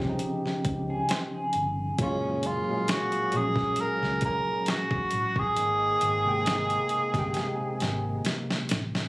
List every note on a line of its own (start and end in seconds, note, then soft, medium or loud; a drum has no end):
0.00 0.16 C2 medium
0.00 2.01 C#3 medium
0.00 2.00 F3 medium
0.00 1.50 C4 medium
0.00 2.01 C4 medium
0.00 2.01 C#4 medium
0.00 0.09 D#4 medium
0.00 1.50 D#4 medium
0.00 1.50 G4 medium
0.00 snare soft
0.09 1.68 D#4 medium
0.19 closed hi-hat medium
0.45 muted fingered electric bass stroke soft
0.45 snare soft
0.65 1.02 C#2 medium
0.65 kick medium
0.65 closed hi-hat medium
0.90 1.09 G#4 medium
1.09 1.33 C5 medium
1.09 snare loud
1.09 closed hi-hat medium
1.34 1.96 G#4 medium
1.53 1.92 G1 medium
1.53 closed hi-hat medium
1.98 2.55 F#1 medium
1.98 2.62 A#2 medium
1.98 2.62 F#3 medium
1.98 2.63 G#3 medium
1.98 5.08 A#3 medium
1.98 5.08 C#4 medium
1.98 2.48 C#4 medium
1.98 2.64 F4 loud
1.98 5.08 G#4 medium
1.98 kick loud
1.98 closed hi-hat medium
2.43 2.93 F4 medium
2.43 closed hi-hat medium
2.67 3.28 A#2 medium
2.67 3.29 F#3 medium
2.67 3.30 G#3 medium
2.67 3.30 F5 medium
2.88 3.38 F#4 loud
2.88 snare loud
2.88 closed hi-hat medium
3.12 closed hi-hat soft
3.32 3.71 A#1 medium
3.32 4.99 A#2 medium
3.32 4.99 F#3 medium
3.32 5.00 G#3 medium
3.32 closed hi-hat medium
3.36 5.01 C#4 medium
3.36 3.83 G#4 medium
3.56 kick medium
3.56 snare soft
3.76 muted fingered electric bass stroke soft
3.76 closed hi-hat medium
3.81 4.24 A#4 loud
4.02 4.39 C#2 medium
4.02 snare soft
4.21 kick medium
4.21 closed hi-hat medium
4.26 4.72 A#4 loud
4.66 snare loud
4.66 closed hi-hat medium
4.71 5.41 F#4 medium
4.91 kick medium
5.11 5.57 A1 medium
5.11 closed hi-hat medium
5.36 8.27 G#4 medium
5.36 kick medium
5.56 5.94 G#1 loud
5.56 8.66 A#3 medium
5.56 8.66 C4 medium
5.56 8.66 D#4 medium
5.56 closed hi-hat medium
6.01 6.76 G#1 medium
6.01 closed hi-hat medium
6.24 7.07 C3 medium
6.24 7.08 G#3 medium
6.24 7.08 A#3 medium
6.28 7.09 G5 medium
6.46 snare loud
6.46 closed hi-hat medium
6.70 closed hi-hat medium
6.89 muted fingered electric bass stroke soft
6.89 closed hi-hat medium
7.14 7.32 G1 medium
7.14 8.79 C3 medium
7.14 8.80 G#3 medium
7.14 8.80 A#3 medium
7.14 kick medium
7.14 snare soft
7.14 closed hi-hat soft
7.19 8.81 G5 medium
7.34 snare medium
7.34 closed hi-hat medium
7.61 muted fingered electric bass stroke soft
7.80 8.18 G#1 medium
7.80 snare medium
7.80 closed hi-hat medium
8.25 snare medium
8.25 closed hi-hat medium
8.51 snare medium
8.69 9.08 A1 medium
8.69 snare medium
8.69 closed hi-hat medium
8.95 snare medium